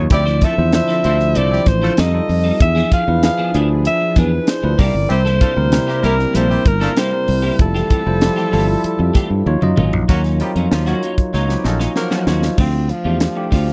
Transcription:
Already playing: F#3 D#4 F4 C#5
0.10 D2 D3 F3 G3 C4 D4 E4 G4 C5 D5, muted clean electric guitar stroke, kick, closed hi-hat
0.26 F3 C4 E4 C5, snare
0.41 F3 A3 C4 E4 F4 A4 E5, kick, closed hi-hat
0.57 E2 F3 D4 E4 C5, muted clean electric guitar stroke
0.72 F3 D4 E4 C5 E5, muted clean electric guitar stroke, snare, closed hi-hat
0.88 F3 C4 E4 F4 A4 C5, snare
1.04 D2 F3 C4 D4 E4 F4 A4 C5, closed hi-hat
1.19 muted clean electric guitar stroke, snare
1.35 C2 F3 A3 C4 E4 F4 A4 D5, closed hi-hat
1.51 G3 C4 E4 G4, muted clean electric guitar stroke
1.66 A1 C5, muted clean electric guitar stroke, kick, snare, closed hi-hat
1.82 F3 A3 C4 E4 F4 A4 C5
1.97 F2 G3 C4 D#4 F4 A4 D#5, snare, closed hi-hat
2.13 G3 D#4 F4 A4, muted clean electric guitar stroke
2.29 F2, muted clean electric guitar stroke, open hi-hat
2.44 G3 C4 D#4 A4
2.60 E2 F3 D4 E4 G#4 E5, kick, closed hi-hat
2.75 F3 B3 D4 G#4, snare
2.90 F3 B3 D4 G#4 F5, kick, closed hi-hat
3.07 E2 F3 D4 E4 B4, muted clean electric guitar stroke
3.22 F3 D4 E4 G#4 F5, muted clean electric guitar stroke, snare, closed hi-hat
3.38 F3 B3 D4 G#4
3.54 D2 F3 B3 D4 E4 G#4, closed hi-hat
3.69 muted clean electric guitar stroke
3.85 E5, muted clean electric guitar stroke, closed hi-hat
4.00 muted clean electric guitar stroke
4.16 E2 F3 B3 D4 G#4 B4, kick, snare, closed hi-hat
4.31 muted clean electric guitar stroke
4.47 C5, snare, closed hi-hat
4.63 D2 F3 D4 E4 B4, muted clean electric guitar stroke
4.78 C2 C3 G3 A#3 C4 D4 E4 G4 A#4 D5, kick, open hi-hat
4.85 E4
4.94 G1, muted clean electric guitar stroke
5.09 C2 G3 C4 E4 G4 C5, muted clean electric guitar stroke, closed hi-hat
5.25 G3 A#3 E4 A4, snare
5.40 G3 A3 A#3 D4 E4 F4 G4 A4, kick, closed hi-hat
5.56 D2 G3 C4 E4 A#4, muted clean electric guitar stroke
5.72 G3 C4 E4 A#4, muted clean electric guitar stroke, snare, closed hi-hat
5.87 G3 A#3 E4 G4 A#4, snare
6.02 C2 G3 A#3 C4 D4 E4 G4 A#4, closed hi-hat
6.10 E4
6.18 muted clean electric guitar stroke, snare
6.33 A#1 G3 A3 A#3 D4 E4 F4 G4 A4 C5, closed hi-hat
6.49 G3 C4 E4 G4, muted clean electric guitar stroke
6.65 G1 A#4, muted clean electric guitar stroke, kick, closed hi-hat
6.80 G3 A3 A#3 D4 E4 F4 A4
6.96 G3 A#3 E4 G4 C5, snare, closed hi-hat
7.12 G3 C4 E4 A#4, muted clean electric guitar stroke
7.27 C2, muted clean electric guitar stroke, open hi-hat
7.42 G3 A#3 E4 G4
7.59 F1 F3 G3 E4 F4 G4 A4 E5, kick, closed hi-hat
7.74 E3 A3 C4 G4, snare
7.89 E3 A3 C4 G4, kick, closed hi-hat
8.05 F1 G3 E4 F4 C5, muted clean electric guitar stroke
8.21 G3 E4 F4 G4, muted clean electric guitar stroke, snare, closed hi-hat
8.36 E3 A3 C4 G4, snare
8.51 G1 E3 G3 A3 C4 E4 F4 G4 A4, open hi-hat
8.68 muted clean electric guitar stroke
8.83 muted clean electric guitar stroke, muted fingered electric bass stroke, closed hi-hat
8.99 F2, muted clean electric guitar stroke
9.14 E3 A3 C4 G4, kick, snare, closed hi-hat
9.30 G2, muted clean electric guitar stroke
9.46 D#2 F#3 D#4 F4 C#5, high tom
9.61 F#2 F#3 D#4 F4 D#5, muted clean electric guitar stroke, mid tom
9.76 G#1 F#3 A#3 C#4 F4, mid tom
9.93 A#1, floor tom
10.08 D#2 F#3 A#3 C#4 D#4 F4 F#4 C#5, kick, closed hi-hat
10.24 snare, closed hi-hat
10.40 F#3 G3 C4 D#4 F4 G4 A#4, muted clean electric guitar stroke, closed hi-hat
10.56 F2 F#3 A#3 C#4 F4, closed hi-hat
10.71 D#2 F3 A#3 C#4 F4, muted clean electric guitar stroke, snare
10.86 F#3 A#3 C#4 D#4 F4 F#4 C#5, snare, closed hi-hat
11.02 F#3 A#3 C#4 F4, closed hi-hat
11.18 muted clean electric guitar stroke, kick, closed hi-hat
11.33 C#2 F#3 A#3 C#4 D#4 F4 C#5, snare
11.49 G3 C4 D#4 G4, muted clean electric guitar stroke, snare
11.64 A#1 F#3 A3 C#4 D#4 F4 A4 D#5, muted clean electric guitar stroke, snare
11.79 F#3 A#3 C#4 F4, snare
11.95 F3 A#3 F#4 A#4 F#5, muted clean electric guitar stroke, snare
12.11 F#3 A#3 C#4 F#4, snare
12.26 D#2 F#3 A#3 C#4 D#4 F4 F#4 C#5, snare
12.42 muted clean electric guitar stroke, snare
12.57 D2 F3 A3 C4 D4 F4 C5 D5 F5 C6, kick, crash
12.73 muted clean electric guitar stroke
12.88 F3, muted clean electric guitar stroke, closed hi-hat
13.04 E2 F3 A3 C4 D4 F4 G4
13.20 muted clean electric guitar stroke, snare, closed hi-hat
13.35 A3 D4 E4 G4, muted clean electric guitar stroke
13.43 F4
13.51 D2 F3 A3 C4 F4, kick, open hi-hat
13.67 muted clean electric guitar stroke, snare

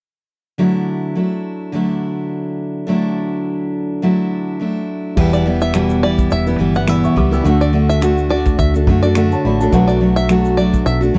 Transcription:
0.58 D3 F#3 A3 D4 E4
1.15 F#3 A3 D4 E4
1.72 D3 F#3 A3 D4 E4
2.87 D3 F#3 A3 D4 E4
4.02 D3 F#3 A3 D4 E4
4.60 F#3 A3 D4 E4
5.16 E1 E2 B2 E3 G3 B3 E4 G4 B4 G5, kick, crash
5.33 D5, shaker
5.46 E3 G3 B3 E4
5.61 E5, shaker
5.74 E2 B2 E3 G3 B3 E4, finger snap, shaker
5.90 shaker
6.03 E3 G3 B3 E4 D5
6.18 kick, shaker
6.31 E1 E5, shaker
6.47 E3 G3 B3 E4, shaker
6.59 G1 E3 G3 B3 E4
6.75 E3 G3 B3 E4 F#5, shaker
6.87 E2 B2 E3 G3 B3 E4 D5 E5 B5, finger snap, shaker
7.04 E5 C#6, shaker
7.16 C#2 E3 G3 B3 E4 F#5 D6, kick
7.31 E3 G3 B3 E4 G5 E6, shaker
7.44 D2 D3 A3 D4 F#4 A4 F#5, shaker
7.61 D5, shaker
7.73 D3 A3 D4 F#4
7.89 E5, shaker
8.01 D3 A3 D4 F#4, finger snap, shaker
8.18 shaker
8.29 D3 A3 D4 F#4 D5
8.46 finger snap, kick, shaker
8.59 D2 E5, kick, shaker
8.74 A3 D4 F#4, shaker
8.87 F#2 D3 A3 D4 F#4, kick
9.02 A3 D4 F#4 D5, shaker
9.15 D3 A3 D4 F#4 A4 F#5, finger snap, shaker
9.32 C#5 A5, shaker
9.45 A1 D3 A3 D4 F#4 D5 B5
9.60 A3 D4 F#4 C#5 A5, shaker
9.71 B1 B2 F#3 A3 D4 F#4 A4 B4, kick, shaker
9.75 F#5
9.88 D5, shaker
10.01 F#3 A3 D4 F#4
10.16 E5, shaker
10.29 B2 F#3 A3 D4 F#4, finger snap, shaker
10.45 shaker
10.57 F#3 A3 D4 F#4 D5, shaker
10.74 kick, shaker
10.86 B1 E5, shaker
11.01 A3 D4 F#4, shaker
11.14 D2 F#3 A3

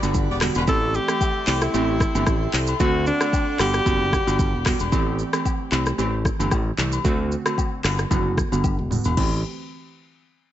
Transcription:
Already playing: G4 D5 F#5 B5
0.02 G1 D3 G3 B3 F#4, high agogo, shaker
0.14 kick, shaker
0.29 E1 B3 G4 D5
0.41 D3 G3 B3 F#4, cross-stick, clap, open hi-hat, shaker
0.55 E1 G3 F#4 B4, high agogo, shaker
0.67 A1 E3 A3 C4 G4 A4 E5 G5 C6, kick, high agogo, shaker
0.94 G4, shaker
1.08 E3 A3 C4 G4, cross-stick, high agogo, shaker
1.21 kick, low woodblock, shaker
1.47 C2 E3 A3 C4 G4, clap, open hi-hat, high agogo, shaker
1.61 E4, cross-stick, shaker
1.74 A1 E3 A3 C4 G4, high agogo, shaker
2.00 kick, cross-stick, shaker
2.15 G1 E3 A3 C4 G4, high agogo, shaker
2.27 A1, kick, cross-stick, shaker
2.53 C2, clap, open hi-hat, shaker
2.67 high agogo, shaker
2.80 D2 D3 A3 C4 F#4 D5 F#5, kick, high agogo, shaker
3.06 D4, shaker
3.21 D3 A3 C4 F#4, cross-stick, high agogo, shaker
3.33 kick, low woodblock, shaker
3.59 G1 D3 G3 B3 F#4 G4 B5, cross-stick, clap, open hi-hat, high agogo, shaker
3.73 cross-stick, shaker
3.86 F#1 D3 G3 B3 F#4, kick, high agogo, shaker
4.13 kick, cross-stick, shaker
4.27 G1 D3 G3 B3 F#4, high agogo, shaker
4.39 kick, shaker
4.54 E1
4.65 D3 G3 B3 F#4, kick, cross-stick, clap, open hi-hat, shaker
4.79 E1, high agogo, shaker
4.92 A1 E3 A3 C4 G4, kick, high agogo, shaker
5.19 shaker
5.33 E3 A3 C4 G4, cross-stick, high agogo, shaker
5.45 kick, low woodblock, shaker
5.72 C2 E3 A3 C4 G4, clap, high agogo, shaker
5.86 cross-stick, shaker
5.98 A1 E3 A3 C4 G4, high agogo, shaker
6.25 kick, cross-stick, shaker
6.39 G1 E3 A3 C4 G4, high agogo, shaker
6.51 A1, kick, cross-stick, low woodblock, shaker
6.78 C2 E3 A3 C4 G4, clap, shaker
6.92 high agogo, shaker
7.04 D2 D3 A3 C4 F#4, kick, high agogo, shaker
7.32 shaker
7.46 D3 A3 C4 F#4, cross-stick, high agogo, shaker
7.58 kick, low woodblock, shaker
7.84 G1 D3 G3 B3 F#4, cross-stick, clap, open hi-hat, high agogo, shaker
7.98 cross-stick, shaker
8.11 F#1 D3 G3 B3 F#4, kick, high agogo, shaker
8.37 kick, cross-stick, shaker
8.52 G1 D3 G3 B3 F#4, high agogo, shaker
8.64 kick, high tom, low woodblock, shaker
8.79 E1, mid tom
8.90 D3 G3 B3 F#4, mid tom, open hi-hat, shaker
9.04 E1, floor tom, high agogo, shaker
9.17 A1 E3 A3 C4 G4, kick, crash, high agogo

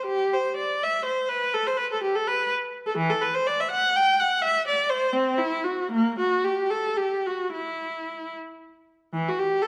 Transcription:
0.06 G4
0.34 C5
0.57 D5
0.84 E5
1.06 C5
1.29 B4
1.54 A4
1.67 C5
1.78 B4
1.93 A4
2.03 G4
2.16 A4
2.28 B4
2.87 A4
2.97 E3
3.10 A4
3.22 B4
3.35 C5
3.47 D5
3.61 E5
3.71 F#5
3.96 G5
4.20 F#5
4.43 E5
4.68 D5
4.90 C5
5.14 C4
5.39 E4
5.65 F#4
5.92 A#3
6.20 F#4
6.45 G4
6.71 A4
6.98 G4
7.27 F#4
7.53 E4
9.13 E3
9.29 F#4
9.39 G4
9.63 A4

